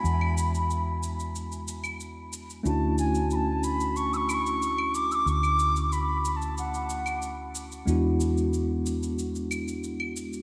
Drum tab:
SH |x-xxx-xxxxxxx-xx|x-xxx-xxxxxxx-xx|xxxxx-xxxxxxx-xx|x-xxx-xxxxxxx-xx|
CL |-x---------x----|----------x--x--|-x---------x----|----------x--x--|